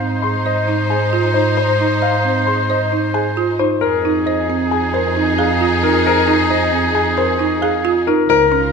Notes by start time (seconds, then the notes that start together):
Already playing: G#2 D#4 C5
0.01 C4
0.22 G#4 C6
0.46 C5 D#5
0.68 D#4
0.90 G#4 G#5
1.13 F4
1.34 D#4 C5
1.57 C5 D#5
1.80 D#4
2.02 D#5 F5
2.25 C4
2.47 G#4 C6
2.70 C5 D#5
2.92 D#4
3.14 G#4 G#5
3.37 F4
3.59 D#4 C5
3.81 F2 D#4 G#4 A#4 C5
4.05 D#4
4.26 C5 D#5
4.50 C4
4.71 G#4 G#5
4.94 A#4 C5
5.16 D#4
5.38 G#4 F5
5.61 F4
5.83 D#4 A#4
6.06 A#4 C5
6.28 D#4
6.50 C5 D#5
6.73 C4
6.95 G#4 G#5
7.17 A#4 C5
7.39 D#4
7.62 G#4 F5
7.85 F4
8.07 D#4 A#4
8.29 C#2 F4 A#4 C5
8.52 C#4